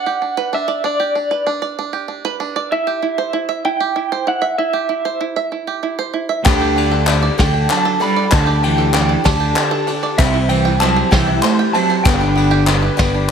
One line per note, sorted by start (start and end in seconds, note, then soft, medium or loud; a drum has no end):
0.00 0.21 D4 medium
0.00 0.38 D5 medium
0.00 0.54 F#5 loud
0.06 0.69 G4 medium
0.22 0.52 D4 medium
0.37 1.00 B4 loud
0.53 0.83 D4 medium
0.53 0.85 E5 medium
0.68 1.31 D5 medium
0.84 1.14 D4 medium
0.84 1.51 D5 loud
1.00 1.62 G4 medium
1.15 1.45 D4 medium
1.31 1.94 B4 medium
1.47 1.77 D4 medium
1.62 2.25 D5 medium
1.79 2.07 D4 medium
1.93 2.56 G4 medium
2.08 2.39 D4 medium
2.25 2.72 B4 loud
2.40 2.71 D4 medium
2.56 2.72 D5 medium
2.72 3.01 E4 medium
2.72 3.65 E5 loud
2.87 3.49 G4 medium
3.02 3.32 E4 medium
3.18 3.81 C5 medium
3.33 3.64 E4 medium
3.49 4.11 E5 medium
3.65 3.95 E4 medium
3.65 4.28 G5 loud
3.80 4.43 G4 medium
3.96 4.26 E4 medium
4.12 4.74 C5 loud
4.27 4.57 E4 medium
4.27 4.58 F#5 loud
4.42 5.05 E5 medium
4.58 4.88 E4 medium
4.58 5.24 E5 loud
4.73 5.36 G4 medium
4.89 5.19 E4 medium
5.05 5.67 C5 medium
5.21 5.51 E4 medium
5.36 5.99 E5 medium
5.52 5.82 E4 medium
5.67 6.30 G4 medium
5.83 6.12 E4 medium
5.99 6.45 C5 medium
6.14 6.45 E4 medium
6.29 6.45 E5 medium
6.43 7.28 D2 medium
6.43 7.02 D3 loud
6.43 7.07 D3 medium
6.43 7.05 G3 medium
6.43 6.75 D4 medium
6.43 7.06 D4 medium
6.43 7.08 G4 loud
6.43 7.03 G5 loud
6.43 kick loud
6.43 clap medium
6.43 ride medium
6.47 7.08 A4 medium
6.61 7.23 G4 medium
6.76 7.06 D4 medium
6.76 ride medium
6.92 7.54 A4 loud
6.92 clap soft
7.06 7.38 G3 medium
7.06 7.38 D4 medium
7.06 7.37 D4 medium
7.06 7.39 G4 medium
7.06 7.37 A4 medium
7.06 clap loud
7.06 ride medium
7.23 7.85 D5 medium
7.38 7.66 D2 loud
7.38 7.68 D3 medium
7.38 8.01 D3 medium
7.38 8.01 D4 medium
7.38 7.53 D4 medium
7.38 7.99 A4 medium
7.38 7.71 G5 loud
7.38 kick medium
7.38 snare loud
7.38 ride medium
7.54 7.69 G5 medium
7.70 7.99 F#3 medium
7.70 8.00 D4 medium
7.70 8.00 A5 loud
7.70 clap loud
7.70 ride medium
7.85 8.47 A4 loud
8.00 8.31 G3 medium
8.00 8.31 D4 medium
8.00 8.31 G4 medium
8.00 8.31 A4 medium
8.00 8.33 B5 medium
8.00 clap soft
8.00 ride medium
8.16 8.79 D5 medium
8.16 clap soft
8.31 9.15 D2 medium
8.31 8.94 D3 medium
8.31 8.61 D3 medium
8.31 8.93 G3 medium
8.31 8.62 D4 loud
8.31 8.93 D4 medium
8.31 8.95 G4 loud
8.31 8.95 A4 loud
8.31 8.63 A5 loud
8.31 kick loud
8.31 clap loud
8.31 ride medium
8.47 9.09 G4 medium
8.63 8.93 E3 medium
8.63 8.93 D4 medium
8.63 8.92 G5 medium
8.63 ride medium
8.78 9.41 A4 medium
8.78 clap soft
8.93 9.24 E3 medium
8.93 9.25 G3 medium
8.93 9.24 D4 medium
8.93 9.24 G4 medium
8.93 9.23 A4 medium
8.93 9.25 G5 medium
8.93 clap loud
8.93 ride medium
9.09 9.72 D5 medium
9.24 9.53 D2 medium
9.24 9.91 D3 medium
9.24 9.88 D3 medium
9.24 9.91 G3 medium
9.24 9.55 D4 loud
9.24 9.88 D4 medium
9.24 9.89 G4 medium
9.24 9.86 A4 medium
9.24 9.91 A5 loud
9.24 kick medium
9.24 snare loud
9.24 ride medium
9.40 10.03 G4 medium
9.56 9.86 D4 medium
9.56 clap loud
9.56 ride medium
9.71 10.18 A4 loud
9.87 10.18 D4 medium
9.87 10.19 D4 medium
9.87 10.19 G4 medium
9.87 10.19 A4 medium
9.87 clap soft
9.87 ride medium
10.03 10.19 D5 medium
10.03 clap soft
10.17 11.02 C2 loud
10.17 10.47 C3 medium
10.17 10.81 C3 medium
10.17 11.12 G3 medium
10.17 10.49 C4 medium
10.17 10.79 C4 loud
10.17 10.81 E4 loud
10.17 11.11 G4 medium
10.17 10.47 E5 loud
10.17 kick loud
10.17 clap loud
10.17 ride medium
10.34 10.96 E4 medium
10.48 10.78 E3 medium
10.48 10.80 C4 medium
10.48 10.80 G5 loud
10.48 ride medium
10.65 11.28 G5 medium
10.65 clap soft
10.80 11.10 F#3 medium
10.80 11.11 C4 medium
10.80 11.10 E4 medium
10.80 11.09 A5 loud
10.80 clap loud
10.80 ride medium
10.96 11.59 C5 medium
11.10 11.40 C2 loud
11.10 11.75 C3 medium
11.10 11.40 E3 medium
11.10 12.05 G3 medium
11.10 11.74 C4 medium
11.10 11.42 C4 medium
11.10 11.73 E4 medium
11.10 12.06 G4 medium
11.10 11.42 G5 loud
11.10 kick medium
11.10 snare loud
11.10 ride medium
11.27 11.90 E4 medium
11.41 11.71 A3 medium
11.41 11.74 C4 medium
11.41 11.72 C6 loud
11.41 clap loud
11.41 ride medium
11.59 12.06 G5 loud
11.73 12.03 F#3 medium
11.73 12.06 C4 medium
11.73 12.05 E4 medium
11.73 12.06 A5 loud
11.73 clap soft
11.73 ride medium
11.77 12.06 C4 medium
11.90 12.05 C5 medium
11.90 clap soft
12.04 12.89 G1 loud
12.04 12.68 G2 medium
12.04 12.68 D3 medium
12.04 13.27 D3 medium
12.04 12.65 G3 medium
12.04 12.34 B3 medium
12.04 12.66 B3 medium
12.04 12.67 D4 medium
12.04 12.69 G4 loud
12.04 13.26 G5 medium
12.04 kick loud
12.04 clap loud
12.04 ride medium
12.21 12.82 D4 medium
12.21 clap soft
12.36 12.66 B3 medium
12.36 ride medium
12.51 13.14 G4 medium
12.51 clap soft
12.66 12.97 G3 medium
12.66 12.97 B3 medium
12.66 12.98 B3 medium
12.66 12.96 D4 medium
12.66 12.96 G4 medium
12.66 clap loud
12.66 ride medium
12.82 13.31 B4 medium
12.82 clap soft
12.97 13.27 G1 medium
12.97 13.31 G2 medium
12.97 13.31 D3 medium
12.97 13.31 G3 medium
12.97 13.31 B3 medium
12.97 13.29 B3 medium
12.97 13.31 D4 medium
12.97 13.31 G4 medium
12.97 kick medium
12.97 snare loud
12.97 clap soft
12.97 ride medium
13.14 13.31 D4 medium